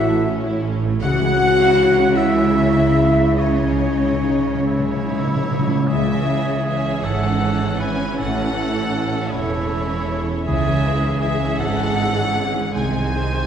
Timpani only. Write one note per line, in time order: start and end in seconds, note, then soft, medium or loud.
3.46 3.53 C#3 soft
3.54 3.61 C#3 soft
3.62 3.70 C#3 soft
3.71 3.78 C#3 soft
3.80 3.87 C#3 soft
3.96 4.03 C#3 medium
4.12 4.20 C#3 soft
4.21 4.29 C#3 medium
4.30 4.37 C#3 medium
4.38 4.46 C#3 medium
4.47 4.53 C#3 medium
4.55 4.62 C#3 medium
4.63 4.70 C#3 medium
4.71 4.78 C#3 medium
4.80 4.86 C#3 medium
4.87 4.94 C#3 medium
4.95 5.01 C#3 medium
5.02 5.10 C#3 medium
5.11 5.18 C#3 medium
5.19 5.26 C#3 medium
5.27 5.34 C#3 medium
5.35 5.42 C#3 loud
5.43 5.50 C#3 medium
5.51 5.58 C#3 loud
5.59 5.66 C#3 loud
5.67 5.74 C#3 loud
5.75 5.82 C#3 loud
5.89 7.00 C#3 medium